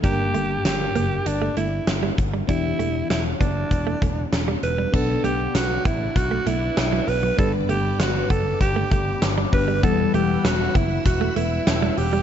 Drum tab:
CC |--------|--------|x-------|--------|
HH |xxxxxxxx|xxxxxxxx|-xxxxxxo|xxxxxxxo|
SD |--o---o-|--o---o-|--o---o-|--o---o-|
BD |o------o|o--ooo--|o--oo---|o--ooo-o|

CC |--------|
HH |xxxxxxxo|
SD |--o---o-|
BD |o--oo---|